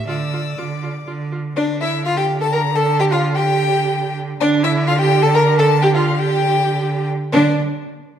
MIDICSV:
0, 0, Header, 1, 5, 480
1, 0, Start_track
1, 0, Tempo, 493827
1, 77, Time_signature, 3, 2, 24, 8
1, 1995, Tempo, 472441
1, 5835, Tempo, 502092
1, 8091, End_track
2, 0, Start_track
2, 0, Title_t, "Violin"
2, 0, Program_c, 0, 40
2, 80, Note_on_c, 0, 88, 93
2, 569, Note_on_c, 0, 86, 71
2, 584, Note_off_c, 0, 88, 0
2, 1049, Note_off_c, 0, 86, 0
2, 1522, Note_on_c, 0, 74, 101
2, 1600, Note_off_c, 0, 74, 0
2, 1758, Note_on_c, 0, 76, 113
2, 1983, Note_off_c, 0, 76, 0
2, 1989, Note_on_c, 0, 77, 101
2, 2110, Note_off_c, 0, 77, 0
2, 2118, Note_on_c, 0, 79, 104
2, 2199, Note_off_c, 0, 79, 0
2, 2359, Note_on_c, 0, 81, 112
2, 2472, Note_on_c, 0, 82, 101
2, 2487, Note_off_c, 0, 81, 0
2, 2710, Note_on_c, 0, 81, 113
2, 2725, Note_off_c, 0, 82, 0
2, 2952, Note_off_c, 0, 81, 0
2, 2960, Note_on_c, 0, 79, 115
2, 3006, Note_off_c, 0, 79, 0
2, 3079, Note_on_c, 0, 77, 107
2, 3160, Note_off_c, 0, 77, 0
2, 3306, Note_on_c, 0, 79, 126
2, 4128, Note_off_c, 0, 79, 0
2, 4386, Note_on_c, 0, 74, 127
2, 4468, Note_off_c, 0, 74, 0
2, 4623, Note_on_c, 0, 76, 126
2, 4704, Note_off_c, 0, 76, 0
2, 4858, Note_on_c, 0, 77, 127
2, 4979, Note_off_c, 0, 77, 0
2, 4990, Note_on_c, 0, 79, 127
2, 5221, Note_on_c, 0, 81, 127
2, 5236, Note_off_c, 0, 79, 0
2, 5338, Note_on_c, 0, 82, 118
2, 5353, Note_off_c, 0, 81, 0
2, 5573, Note_off_c, 0, 82, 0
2, 5579, Note_on_c, 0, 81, 122
2, 5820, Note_on_c, 0, 79, 113
2, 5835, Note_off_c, 0, 81, 0
2, 5943, Note_off_c, 0, 79, 0
2, 5952, Note_on_c, 0, 77, 105
2, 6172, Note_on_c, 0, 79, 121
2, 6186, Note_off_c, 0, 77, 0
2, 7020, Note_off_c, 0, 79, 0
2, 7263, Note_on_c, 0, 74, 102
2, 7535, Note_off_c, 0, 74, 0
2, 8091, End_track
3, 0, Start_track
3, 0, Title_t, "Violin"
3, 0, Program_c, 1, 40
3, 83, Note_on_c, 1, 74, 76
3, 1266, Note_off_c, 1, 74, 0
3, 1525, Note_on_c, 1, 62, 101
3, 1744, Note_off_c, 1, 62, 0
3, 1764, Note_on_c, 1, 64, 87
3, 1842, Note_off_c, 1, 64, 0
3, 2002, Note_on_c, 1, 65, 116
3, 2120, Note_on_c, 1, 67, 101
3, 2135, Note_off_c, 1, 65, 0
3, 2350, Note_off_c, 1, 67, 0
3, 2356, Note_on_c, 1, 69, 87
3, 2464, Note_off_c, 1, 69, 0
3, 2470, Note_on_c, 1, 70, 109
3, 2552, Note_off_c, 1, 70, 0
3, 2707, Note_on_c, 1, 69, 102
3, 2788, Note_off_c, 1, 69, 0
3, 2955, Note_on_c, 1, 67, 114
3, 3003, Note_off_c, 1, 67, 0
3, 3072, Note_on_c, 1, 65, 99
3, 3302, Note_off_c, 1, 65, 0
3, 3308, Note_on_c, 1, 67, 103
3, 4128, Note_off_c, 1, 67, 0
3, 4391, Note_on_c, 1, 62, 110
3, 4473, Note_off_c, 1, 62, 0
3, 4630, Note_on_c, 1, 64, 103
3, 4860, Note_on_c, 1, 65, 113
3, 4876, Note_off_c, 1, 64, 0
3, 4983, Note_on_c, 1, 67, 113
3, 4999, Note_off_c, 1, 65, 0
3, 5212, Note_off_c, 1, 67, 0
3, 5218, Note_on_c, 1, 69, 102
3, 5268, Note_off_c, 1, 69, 0
3, 5342, Note_on_c, 1, 70, 126
3, 5423, Note_off_c, 1, 70, 0
3, 5587, Note_on_c, 1, 69, 120
3, 5668, Note_off_c, 1, 69, 0
3, 5825, Note_on_c, 1, 67, 99
3, 5934, Note_off_c, 1, 67, 0
3, 5940, Note_on_c, 1, 65, 90
3, 6016, Note_off_c, 1, 65, 0
3, 6178, Note_on_c, 1, 67, 99
3, 7007, Note_off_c, 1, 67, 0
3, 7262, Note_on_c, 1, 62, 102
3, 7535, Note_off_c, 1, 62, 0
3, 8091, End_track
4, 0, Start_track
4, 0, Title_t, "Viola"
4, 0, Program_c, 2, 41
4, 71, Note_on_c, 2, 65, 73
4, 149, Note_off_c, 2, 65, 0
4, 319, Note_on_c, 2, 65, 59
4, 397, Note_off_c, 2, 65, 0
4, 566, Note_on_c, 2, 65, 61
4, 643, Note_off_c, 2, 65, 0
4, 805, Note_on_c, 2, 65, 60
4, 883, Note_off_c, 2, 65, 0
4, 1043, Note_on_c, 2, 65, 56
4, 1121, Note_off_c, 2, 65, 0
4, 1282, Note_on_c, 2, 65, 55
4, 1360, Note_off_c, 2, 65, 0
4, 1522, Note_on_c, 2, 62, 97
4, 1600, Note_off_c, 2, 62, 0
4, 1761, Note_on_c, 2, 64, 88
4, 1990, Note_off_c, 2, 64, 0
4, 1995, Note_on_c, 2, 65, 91
4, 2044, Note_off_c, 2, 65, 0
4, 2113, Note_on_c, 2, 67, 88
4, 2195, Note_off_c, 2, 67, 0
4, 2355, Note_on_c, 2, 69, 82
4, 2403, Note_off_c, 2, 69, 0
4, 2475, Note_on_c, 2, 70, 97
4, 2556, Note_off_c, 2, 70, 0
4, 2715, Note_on_c, 2, 69, 96
4, 2955, Note_on_c, 2, 67, 108
4, 2970, Note_off_c, 2, 69, 0
4, 3079, Note_on_c, 2, 65, 91
4, 3095, Note_off_c, 2, 67, 0
4, 3317, Note_on_c, 2, 67, 99
4, 3332, Note_off_c, 2, 65, 0
4, 4150, Note_off_c, 2, 67, 0
4, 4388, Note_on_c, 2, 62, 118
4, 4620, Note_on_c, 2, 64, 110
4, 4635, Note_off_c, 2, 62, 0
4, 4855, Note_off_c, 2, 64, 0
4, 4861, Note_on_c, 2, 65, 109
4, 4910, Note_off_c, 2, 65, 0
4, 4975, Note_on_c, 2, 67, 101
4, 5215, Note_on_c, 2, 69, 101
4, 5231, Note_off_c, 2, 67, 0
4, 5341, Note_on_c, 2, 70, 110
4, 5356, Note_off_c, 2, 69, 0
4, 5580, Note_off_c, 2, 70, 0
4, 5586, Note_on_c, 2, 69, 103
4, 5667, Note_off_c, 2, 69, 0
4, 5830, Note_on_c, 2, 67, 122
4, 5878, Note_off_c, 2, 67, 0
4, 5948, Note_on_c, 2, 65, 92
4, 6176, Note_off_c, 2, 65, 0
4, 6182, Note_on_c, 2, 67, 94
4, 7009, Note_off_c, 2, 67, 0
4, 7265, Note_on_c, 2, 62, 90
4, 7536, Note_off_c, 2, 62, 0
4, 8091, End_track
5, 0, Start_track
5, 0, Title_t, "Cello"
5, 0, Program_c, 3, 42
5, 68, Note_on_c, 3, 50, 80
5, 504, Note_off_c, 3, 50, 0
5, 563, Note_on_c, 3, 50, 72
5, 989, Note_off_c, 3, 50, 0
5, 1041, Note_on_c, 3, 50, 73
5, 1466, Note_off_c, 3, 50, 0
5, 1522, Note_on_c, 3, 50, 94
5, 4344, Note_off_c, 3, 50, 0
5, 4381, Note_on_c, 3, 50, 115
5, 7024, Note_off_c, 3, 50, 0
5, 7270, Note_on_c, 3, 50, 103
5, 7539, Note_off_c, 3, 50, 0
5, 8091, End_track
0, 0, End_of_file